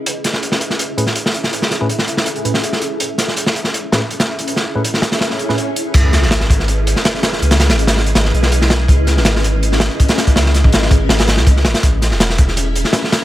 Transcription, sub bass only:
\new Staff \with { instrumentName = "Sub bass" } { \clef bass \time 4/4 \key cis \minor \tempo 4 = 163 r1 | r1 | r1 | r1 |
cis,8. gis,,2 r4 r16 | cis,8. gis,,4~ gis,,16 gis,,8 b,,4. | cis,8. gis,,2 r4 r16 | cis,8. gis,,4~ gis,,16 gis,,8. cis,8. gis,,16 r16 |
a,,8. e,,2 r4 r16 | }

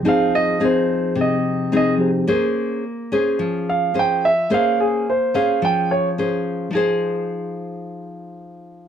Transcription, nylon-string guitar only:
\new Staff \with { instrumentName = "Nylon-string guitar" } { \time 4/4 \key f \minor \tempo 4 = 108 << { <c' ees' aes'>4 <c' ees' aes'>4. r8 <c' ees' aes'>8 r8 | <des' aes' c''>4 r8 <des' aes' c''>4. <des' aes' c''>8 r8 | <des' aes' c''>4 r8 <des' aes' c''>4. <des' aes' c''>4 | <f ees' aes' c''>1 | } \\ { f2 c2 | bes2 f2 | bes2 f2 | r1 | } >> }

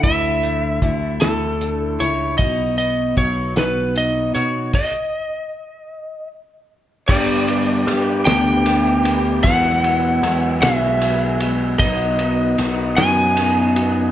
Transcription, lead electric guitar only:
\new Staff \with { instrumentName = "Lead electric guitar" } { \time 6/8 \key b \mixolydian \tempo 4. = 51 e''4. a'4 cis''8 | dis''8 dis''8 cis''8 b'8 dis''8 cis''8 | dis''2 r4 | d''4. g''4. |
fis''4. e''4 r8 | dis''4. gis''4. | }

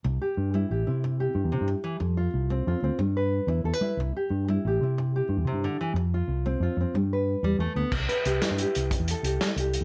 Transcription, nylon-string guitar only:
\new Staff \with { instrumentName = "Nylon-string guitar" } { \time 12/8 \key c \major \tempo 4. = 122 << { r8 g'4 e'8 g'8 e'4 g'2~ g'8 | r8 f'4 c'8 f'8 c'8 r8 b'4 e'8 a'16 b'16 e'8~ | e'8 g'4 e'8 g'8 e'4 g'2~ g'8 | r8 f'4 c'8 f'8 c'8 r8 b'2~ b'8 |
r8 b'8 g'8 e'8 g'4. a'8 g'8 e'8 g'4 | } \\ { c4 r8 g4 r8 c4 r8 c8 r8 e8 | f4 r8 a4 r8 g4 r8 d'4 r8 | c4 r8 g4 r8 c4 r8 c8 d8 e8 | r4. a4 r8 g4 r8 g8 a8 b8 |
c4 r8 g4 r8 c4 r8 g4 r8 | } >> }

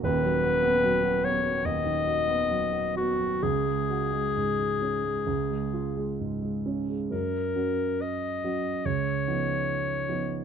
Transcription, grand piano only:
\new Staff \with { instrumentName = "Grand piano" } { \clef bass \time 4/4 \key fis \major \tempo 4 = 68 <dis,, dis,>16 fis16 fis'16 b16 fis16 fis'16 b16 fis16 dis,16 dis16 fis'16 b16 fis16 fis'16 b16 fis16 | cis,16 gis16 fis'16 gis16 gis,16 gis16 cis'16 gis16 cis,16 gis16 eis'16 gis16 gis,16 gis16 cis'16 gis16 | fis,8 <fis cis' fis'>4 <fis cis' fis'>8 cis,8 <eis b dis'>4 <eis b dis'>8 | }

